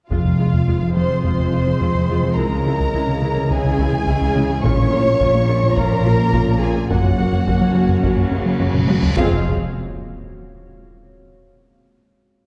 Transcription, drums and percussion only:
0.11 taiko
4.64 taiko
5.21 taiko
5.77 taiko
6.33 taiko
6.91 taiko
7.47 taiko
8.04 taiko
8.60 taiko low-mid
8.74 taiko mid
8.88 taiko high
9.03 taiko low
9.17 taiko

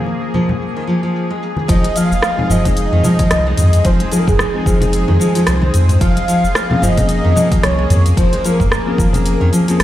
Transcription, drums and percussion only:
0.06 high bongo, cabasa
0.34 low conga, cabasa
0.49 low conga, cabasa
0.62 cabasa
0.89 cabasa
1.04 cabasa
1.16 cabasa
1.43 cabasa
1.57 high bongo, high conga, cabasa
1.69 kick, closed hi-hat, cabasa
1.84 closed hi-hat
1.96 closed hi-hat, cabasa
2.12 cabasa
2.22 cross-stick, high bongo, cabasa
2.39 low conga
2.50 mid tom, cabasa
2.65 kick, closed hi-hat, low conga, cabasa
2.77 closed hi-hat, cabasa
3.03 low conga, cabasa
3.19 kick, closed hi-hat, high conga, cabasa
3.31 cross-stick, closed hi-hat, cabasa
3.58 closed hi-hat, mid tom, high conga, cabasa
3.73 closed hi-hat, cabasa
3.85 kick, closed hi-hat, cabasa
4.00 closed hi-hat
4.12 closed hi-hat, cabasa
4.27 kick, mid tom, cabasa
4.39 cross-stick, high bongo, cabasa
4.66 kick, high conga, cabasa
4.81 closed hi-hat, low conga, cabasa
4.93 closed hi-hat, cabasa
5.08 high conga
5.21 cabasa
5.35 closed hi-hat, cabasa
5.47 cross-stick, closed hi-hat, cabasa
5.62 high conga
5.74 closed hi-hat, cabasa
5.89 closed hi-hat, mid tom, high bongo, cabasa
6.01 kick, closed hi-hat, cabasa
6.17 closed hi-hat
6.28 closed hi-hat, cabasa
6.45 cabasa
6.55 cross-stick, high bongo, cabasa
6.71 low conga
6.82 mid tom, cabasa
6.97 kick, closed hi-hat, low conga, cabasa
7.09 closed hi-hat, cabasa
7.36 low conga, cabasa
7.51 kick, closed hi-hat, high conga, cabasa
7.63 cross-stick, closed hi-hat, cabasa
7.90 closed hi-hat, mid tom, high conga, cabasa
8.06 closed hi-hat, cabasa
8.17 kick, closed hi-hat, cabasa
8.33 closed hi-hat
8.44 closed hi-hat, cabasa
8.60 kick, mid tom, cabasa
8.71 cross-stick, high bongo, cabasa
8.98 kick, high conga, cabasa
9.13 closed hi-hat, low conga, cabasa
9.26 closed hi-hat, cabasa
9.41 high conga
9.53 closed hi-hat, cabasa
9.68 closed hi-hat, cabasa
9.80 cross-stick, closed hi-hat

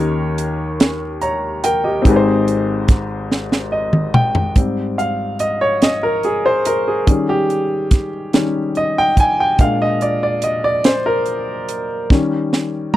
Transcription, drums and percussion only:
0.38 closed hi-hat
0.80 snare, closed hi-hat
1.21 closed hi-hat
1.64 closed hi-hat
2.05 kick, closed hi-hat
2.48 closed hi-hat
2.88 kick, snare, closed hi-hat
3.32 snare
3.52 snare
3.93 mid tom
4.14 mid tom
4.35 floor tom
4.56 kick, closed hi-hat
4.99 closed hi-hat
5.39 closed hi-hat
5.82 snare, closed hi-hat
6.23 closed hi-hat
6.65 closed hi-hat
7.07 kick, closed hi-hat
7.50 closed hi-hat
7.91 kick, snare, closed hi-hat
8.33 snare, closed hi-hat
8.75 closed hi-hat
9.17 kick, closed hi-hat
9.59 kick, closed hi-hat
10.01 closed hi-hat
10.42 closed hi-hat
10.84 snare, closed hi-hat
11.26 closed hi-hat
11.69 closed hi-hat
12.10 kick, snare
12.53 snare

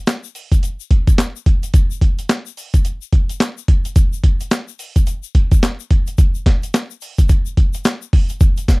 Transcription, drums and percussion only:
0.07 snare, clap, closed hi-hat, shaker
0.24 shaker
0.35 open hi-hat, shaker
0.52 kick, closed hi-hat, shaker
0.63 closed hi-hat, shaker
0.80 shaker
0.91 kick, closed hi-hat
1.07 kick, closed hi-hat, shaker
1.18 snare, clap, closed hi-hat, shaker
1.36 shaker
1.46 kick, closed hi-hat
1.63 closed hi-hat, shaker
1.74 kick, closed hi-hat, shaker
1.91 shaker
2.01 kick, closed hi-hat
2.19 closed hi-hat, shaker
2.29 snare, clap, closed hi-hat, shaker
2.46 shaker
2.57 open hi-hat, shaker
2.74 kick, closed hi-hat, shaker
2.85 closed hi-hat, shaker
3.02 shaker
3.12 kick, closed hi-hat
3.29 closed hi-hat, shaker
3.40 snare, clap, closed hi-hat, shaker
3.58 shaker
3.68 kick, closed hi-hat
3.85 closed hi-hat, shaker
3.96 kick, closed hi-hat, shaker
4.13 shaker
4.24 kick, closed hi-hat
4.41 closed hi-hat, shaker
4.51 snare, clap, closed hi-hat, shaker
4.68 shaker
4.79 open hi-hat, shaker
4.96 kick, closed hi-hat, shaker
5.07 closed hi-hat, shaker
5.23 shaker
5.35 kick, closed hi-hat
5.51 kick, closed hi-hat, shaker
5.63 snare, clap, closed hi-hat, shaker
5.80 shaker
5.90 kick, closed hi-hat
6.07 closed hi-hat, shaker
6.18 kick, closed hi-hat, shaker
6.35 shaker
6.46 kick, snare, closed hi-hat
6.63 closed hi-hat, shaker
6.74 snare, clap, closed hi-hat, shaker
6.91 shaker
7.01 open hi-hat, shaker
7.18 kick, closed hi-hat, shaker
7.29 kick, closed hi-hat, shaker
7.46 shaker
7.57 kick, closed hi-hat
7.74 closed hi-hat, shaker
7.85 snare, clap, closed hi-hat, shaker
8.02 shaker
8.13 kick, open hi-hat
8.29 closed hi-hat, shaker
8.41 kick, closed hi-hat, shaker
8.57 closed hi-hat, shaker
8.68 kick, snare, closed hi-hat, tambourine, shaker

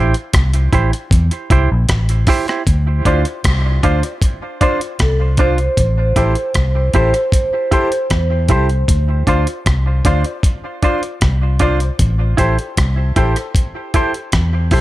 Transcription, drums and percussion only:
0.14 closed hi-hat
0.33 kick, cross-stick, closed hi-hat
0.54 closed hi-hat
0.73 kick, closed hi-hat
0.93 closed hi-hat
1.11 kick, closed hi-hat
1.31 closed hi-hat
1.50 kick, closed hi-hat
1.89 kick, cross-stick, closed hi-hat
2.09 closed hi-hat
2.27 kick, open hi-hat
2.48 cross-stick, closed hi-hat
2.67 kick, closed hi-hat
3.05 kick, closed hi-hat
3.25 closed hi-hat
3.44 kick, cross-stick, closed hi-hat
3.83 kick, closed hi-hat
4.03 closed hi-hat
4.22 kick, closed hi-hat
4.61 kick, closed hi-hat
4.81 closed hi-hat
4.99 kick, cross-stick, closed hi-hat
5.37 kick, closed hi-hat
5.58 closed hi-hat
5.77 kick, closed hi-hat
6.16 kick, closed hi-hat
6.35 closed hi-hat
6.54 kick, cross-stick, closed hi-hat
6.93 kick, closed hi-hat
7.14 closed hi-hat
7.32 kick, closed hi-hat
7.72 kick, closed hi-hat
7.92 closed hi-hat
8.10 kick, cross-stick, closed hi-hat
8.49 kick, closed hi-hat
8.69 closed hi-hat
8.88 kick, closed hi-hat
9.27 kick, closed hi-hat
9.47 closed hi-hat
9.66 kick, cross-stick, closed hi-hat
10.05 kick, closed hi-hat
10.24 closed hi-hat
10.43 kick, closed hi-hat
10.83 kick, closed hi-hat
11.03 closed hi-hat
11.21 kick, cross-stick, closed hi-hat
11.59 kick, closed hi-hat
11.80 closed hi-hat
11.99 kick, closed hi-hat
12.38 kick, closed hi-hat
12.59 closed hi-hat
12.77 kick, cross-stick, closed hi-hat
13.16 kick, closed hi-hat
13.36 closed hi-hat
13.55 kick, closed hi-hat
13.94 kick, closed hi-hat
14.14 closed hi-hat
14.32 kick, cross-stick, closed hi-hat
14.71 kick, open hi-hat

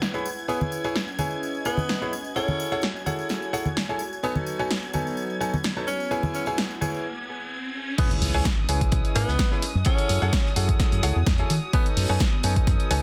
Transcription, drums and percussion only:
0.02 snare, tambourine
0.14 tambourine
0.26 tambourine
0.38 tambourine
0.49 tambourine
0.61 tambourine, high conga
0.72 tambourine
0.84 tambourine
0.95 snare, tambourine
1.08 tambourine
1.19 tambourine, high conga
1.31 tambourine
1.43 tambourine
1.55 tambourine
1.65 tambourine
1.77 tambourine, high conga
1.89 snare, tambourine
2.02 tambourine
2.13 tambourine
2.24 tambourine
2.36 tambourine
2.48 tambourine, high conga
2.60 tambourine
2.72 tambourine
2.82 snare, tambourine
2.96 tambourine
3.06 tambourine, high conga
3.19 tambourine
3.29 snare, tambourine
3.42 tambourine
3.54 tambourine
3.65 tambourine, high conga
3.77 snare, tambourine
3.89 tambourine
3.99 tambourine
4.13 tambourine
4.24 tambourine
4.35 tambourine, high conga
4.46 tambourine
4.59 tambourine
4.71 snare, tambourine
4.83 tambourine
4.93 tambourine, high conga
5.07 tambourine
5.17 tambourine
5.30 tambourine
5.41 tambourine
5.53 tambourine, high conga
5.64 snare, tambourine
5.76 tambourine
5.88 tambourine
6.00 tambourine
6.11 tambourine
6.23 tambourine, high conga
6.35 tambourine
6.46 tambourine
6.58 snare, tambourine
6.70 tambourine
6.82 tambourine, high conga
6.94 tambourine
7.98 kick, closed hi-hat, crash
8.11 closed hi-hat
8.22 open hi-hat
8.45 kick, snare, closed hi-hat
8.69 closed hi-hat, open hi-hat
8.81 kick, closed hi-hat
8.92 kick, closed hi-hat
9.05 closed hi-hat
9.16 closed hi-hat, open hi-hat
9.28 snare
9.39 kick, snare, closed hi-hat
9.52 snare
9.62 closed hi-hat, open hi-hat
9.85 kick, closed hi-hat
9.98 closed hi-hat
10.09 closed hi-hat, open hi-hat
10.33 kick, snare, closed hi-hat
10.46 snare
10.56 closed hi-hat, open hi-hat
10.69 kick, closed hi-hat
10.80 kick, snare, closed hi-hat
10.92 closed hi-hat
11.03 snare, closed hi-hat, open hi-hat
11.27 kick, snare, closed hi-hat
11.38 closed hi-hat
11.50 closed hi-hat, open hi-hat
11.73 kick, closed hi-hat
11.86 closed hi-hat
11.97 open hi-hat
12.20 kick, snare, closed hi-hat
12.43 closed hi-hat, open hi-hat
12.56 kick, closed hi-hat
12.67 kick, closed hi-hat
12.80 closed hi-hat
12.91 closed hi-hat, open hi-hat

